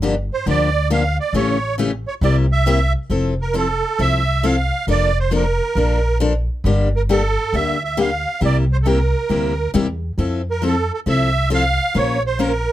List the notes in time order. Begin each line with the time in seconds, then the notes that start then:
Already playing: G1
0.02 D3 F3 A#3 D4 G4
0.33 C5
0.46 D2 D3 F3 A#3 D4 G4 D5
0.90 D3 F3 A#3 D4 G4 F5
1.20 D5
1.33 A1 C#3 E3 A3 C#4 G4 C#5
1.78 C#3 E3 A3 C#4 G4
2.08 C#5
2.21 C2 C3 G3 A#3 E4 G4 D5
2.52 E5
2.66 C3 G3 A#3 E4 G4
3.10 F1 F3 C4 E4 A4
3.42 A#4
3.54 F3 C4 E4 A4
3.99 C2 F3 C4 E4 A4 E5
4.43 F3 C4 E4 A4 F5
4.87 F1 F3 A#3 D4 A4 D5
5.20 C5
5.31 F3 A#3 D4 A4
5.36 A#4
5.75 A#1 F3 A#3 D4 A4
6.20 F3 A#3 D4 A4
6.64 G1 D3 G3 A#3 D4 G4
6.96 A#4
7.09 D3 G3 A#3 D4 G4 A4
7.53 D2 D3 G3 A#3 D4 G4 E5
7.84 E5
7.97 D3 G3 A#3 D4 G4 F5
8.41 C2 C3 G3 A#3 E4 G4
8.45 D5
8.73 C5
8.83 C3 G3 A#3 E4 G4 A4
8.88 A#4
9.29 D2 C3 G3 A#3 E4 G4
9.74 E2 C3 G3 A#3 E4 G4
10.18 F2 F3 C4 E4 A4
10.51 A#4
10.62 F3 C4 E4 A4
10.66 A4
10.94 A4
11.06 C2 F3 C4 E4 A4 E5
11.50 F3 C4 E4 A4 F5
11.94 A#1 F3 A#3 C#4 F4 C5 C#5
12.27 C5
12.39 F3 A#3 C#4 F4 A#4 C5